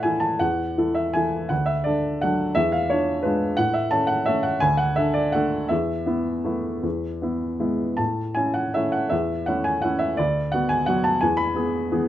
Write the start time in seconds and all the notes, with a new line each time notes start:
Already playing: A2 E4 A4 C#5 D5 E5 F#5
0.03 E3 E4 A4 G#5
0.20 A5
0.39 E2 F#5
0.78 E3 E4 A4
0.95 E5
1.14 E3 E4 A4 G#5
1.49 D2 F#5
1.66 E5
1.84 D4 A4 D5
2.21 F#3 D4 A4 F#5
2.55 E2 E5
2.72 F5
2.90 D4 F4 C#5
3.23 G#3 D4 F4 B4
3.57 A2 F#5
3.74 E5
3.91 C#4 A4 A5
4.07 F#5
4.26 A3 C#4 A4 E5
4.43 F#5
4.60 D2 G#5
4.77 F#5
4.96 D4 A4 E5
5.14 D5
5.32 A3 D4 A4 F#5
5.69 E2 E5
6.06 B3 E4
6.45 A3 B3 E4
6.83 E2
7.22 B3 E4
7.59 G#3 B3 E4
7.97 A2 A5
8.35 C#4 E4 G#5
8.54 F#5
8.74 A3 C#4 E4 E5
8.92 F#5
9.09 E2 E5
9.46 A3 C#4 E4 F#5
9.64 G#5
9.82 A3 C#4 E4 F#5
9.99 E5
10.17 D2 D5
10.52 B3 F#4 F#5
10.69 G#5
10.86 F#3 B3 F#4 F#5
11.04 A5
11.21 E2 G#5
11.37 B5
11.55 B3 G#4
11.92 E3 B3 G#4